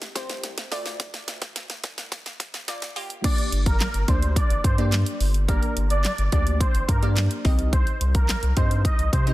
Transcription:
0.02 snare loud
0.02 closed hi-hat medium
0.15 0.55 C2 loud
0.15 0.72 C4 medium
0.15 0.72 G4 medium
0.15 0.72 C5 medium
0.15 kick loud
0.15 snare loud
0.15 closed hi-hat medium
0.29 snare loud
0.29 closed hi-hat soft
0.43 snare loud
0.43 closed hi-hat medium
0.58 snare loud
0.58 closed hi-hat medium
0.71 1.11 D2 loud
0.71 1.63 A3 medium
0.71 1.63 F4 medium
0.71 1.63 D5 loud
0.71 snare loud
0.71 open hi-hat medium
0.86 snare loud
0.86 closed hi-hat soft
1.00 kick loud
1.00 snare loud
1.00 closed hi-hat loud
1.14 snare loud
1.14 closed hi-hat soft
1.28 1.67 D2 medium
1.28 snare loud
1.28 closed hi-hat medium
1.42 kick loud
1.42 snare loud
1.42 closed hi-hat medium
1.56 snare loud
1.56 closed hi-hat loud
1.70 snare loud
1.70 closed hi-hat medium
1.84 2.23 C2 medium
1.84 kick loud
1.84 snare loud
1.84 closed hi-hat medium
1.98 snare loud
1.98 closed hi-hat medium
2.12 kick loud
2.12 snare loud
2.12 closed hi-hat loud
2.26 snare loud
2.26 closed hi-hat medium
2.40 2.79 A#1 loud
2.40 kick loud
2.40 snare loud
2.40 closed hi-hat medium
2.54 snare loud
2.54 closed hi-hat soft
2.68 2.91 A#3 medium
2.68 2.91 F4 medium
2.68 2.91 D5 medium
2.68 snare loud
2.68 closed hi-hat medium
2.82 snare loud
2.82 closed hi-hat medium
2.96 3.16 A#1 loud
2.96 3.23 A#3 loud
2.96 3.24 F4 loud
2.96 3.23 G4 loud
2.96 open hi-hat medium
3.10 closed hi-hat soft
3.24 3.92 A#3 medium
3.24 3.93 D4 medium
3.24 3.93 G4 medium
3.24 3.36 D5 loud
3.24 3.93 D5 loud
3.24 kick loud
3.24 closed hi-hat loud
3.24 crash loud
3.38 closed hi-hat soft
3.52 3.82 G1 loud
3.52 closed hi-hat medium
3.66 3.89 A#4 medium
3.66 kick loud
3.66 closed hi-hat medium
3.80 snare loud
3.80 clap loud
3.80 closed hi-hat loud
3.94 4.04 G1 medium
3.94 closed hi-hat medium
4.08 4.38 D2 medium
4.08 4.65 A#3 medium
4.08 4.65 D4 medium
4.08 4.65 G4 medium
4.08 4.20 C5 medium
4.08 4.65 D5 medium
4.08 kick loud
4.08 closed hi-hat medium
4.22 closed hi-hat medium
4.36 4.59 D5 medium
4.36 kick loud
4.36 closed hi-hat loud
4.50 4.60 G1 medium
4.50 closed hi-hat medium
4.64 5.04 G2 loud
4.64 4.76 C5 medium
4.64 kick loud
4.64 closed hi-hat medium
4.78 5.35 A#3 medium
4.78 5.35 D4 medium
4.78 5.35 G4 medium
4.78 5.36 D5 loud
4.78 closed hi-hat soft
4.92 snare medium
4.92 clap loud
4.92 closed hi-hat medium
5.06 closed hi-hat medium
5.20 5.60 G1 loud
5.20 open hi-hat medium
5.34 closed hi-hat soft
5.48 6.17 A#3 medium
5.48 6.17 D4 medium
5.48 6.17 G4 medium
5.48 5.60 A#4 loud
5.48 6.17 D5 loud
5.48 kick loud
5.48 closed hi-hat loud
5.63 closed hi-hat soft
5.77 6.06 G1 medium
5.77 closed hi-hat medium
5.90 6.13 D5 medium
5.90 closed hi-hat medium
6.04 snare loud
6.04 clap loud
6.04 closed hi-hat loud
6.18 6.28 G1 medium
6.18 closed hi-hat medium
6.32 6.62 D2 medium
6.32 6.89 A#3 medium
6.32 6.90 D4 medium
6.32 6.90 G4 medium
6.32 6.44 D5 medium
6.32 6.90 D5 medium
6.32 kick loud
6.32 closed hi-hat medium
6.47 closed hi-hat medium
6.61 6.83 C5 medium
6.61 kick loud
6.61 closed hi-hat loud
6.75 6.85 G1 medium
6.75 closed hi-hat medium
6.89 7.28 G2 loud
6.89 7.00 A#4 medium
6.89 kick loud
6.89 closed hi-hat medium
7.02 7.45 A#3 medium
7.02 7.45 D4 medium
7.02 7.44 G4 medium
7.02 7.45 D5 loud
7.02 closed hi-hat soft
7.17 snare medium
7.17 clap loud
7.17 closed hi-hat medium
7.31 closed hi-hat medium
7.45 7.84 C2 medium
7.45 8.36 C4 loud
7.45 8.36 D#4 medium
7.45 8.36 G4 medium
7.45 8.36 D#5 loud
7.45 kick loud
7.45 open hi-hat medium
7.59 closed hi-hat soft
7.73 7.84 C5 loud
7.73 kick loud
7.73 closed hi-hat medium
7.87 closed hi-hat soft
8.01 8.30 C2 loud
8.01 closed hi-hat medium
8.15 8.38 A#4 medium
8.15 kick loud
8.15 closed hi-hat medium
8.29 snare loud
8.29 clap loud
8.29 closed hi-hat loud
8.43 8.53 C2 medium
8.43 closed hi-hat medium
8.57 8.86 G2 loud
8.57 9.14 C4 medium
8.57 9.14 D#4 medium
8.57 9.14 G4 medium
8.57 8.68 C5 medium
8.57 9.14 D#5 medium
8.57 kick medium
8.57 closed hi-hat medium
8.71 closed hi-hat medium
8.85 9.08 D#5 loud
8.85 kick loud
8.85 closed hi-hat loud
8.99 9.09 C2 medium
8.99 closed hi-hat medium
9.13 9.34 C3 loud
9.13 9.24 C5 medium
9.13 kick loud
9.13 closed hi-hat medium
9.27 9.34 C4 medium
9.27 9.34 D#4 medium
9.27 9.34 G4 medium
9.27 9.34 D#5 loud
9.27 closed hi-hat soft

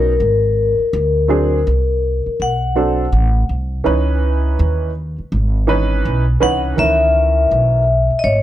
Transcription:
0.00 0.16 B1 medium
0.00 0.11 F#3 medium
0.00 0.11 B3 medium
0.00 0.11 C#4 medium
0.00 0.12 D#4 medium
0.00 2.49 A#4 medium
0.20 0.76 G#1 medium
0.79 muted upright bass stroke soft
0.93 1.63 D2 loud
1.28 1.57 F#3 medium
1.28 1.57 C4 medium
1.28 1.58 D4 medium
1.28 1.58 G#4 medium
1.67 2.23 C2 medium
2.26 muted upright bass stroke soft
2.40 3.09 B1 medium
2.40 3.46 F#5 medium
2.75 3.04 F#3 medium
2.75 3.04 C4 medium
2.75 3.04 D4 medium
2.75 3.05 A4 medium
3.12 3.47 A1 medium
3.49 3.84 C2 medium
3.84 4.55 C#2 medium
3.84 4.89 E3 medium
3.84 4.89 C#4 medium
3.84 4.90 D#4 medium
3.84 4.90 B4 medium
4.59 5.15 D#2 medium
5.18 muted upright bass stroke soft
5.32 6.01 G#1 medium
5.67 6.22 E3 medium
5.67 6.23 C#4 medium
5.67 6.23 D#4 medium
5.67 6.23 B4 loud
6.05 6.40 B1 medium
6.40 6.77 C2 medium
6.40 6.74 E3 medium
6.40 6.75 C#4 medium
6.40 6.96 D#4 medium
6.40 6.96 B4 medium
6.40 6.59 F#5 loud
6.76 7.48 C#2 loud
6.76 7.82 D#3 medium
6.76 7.81 E3 medium
6.76 7.82 C#4 medium
6.76 7.82 A#4 medium
6.76 8.24 E5 medium
7.51 8.08 B1 medium
8.10 muted upright bass stroke soft
8.19 8.24 D#5 medium
8.24 8.43 G#1 medium
8.24 8.43 C#5 medium

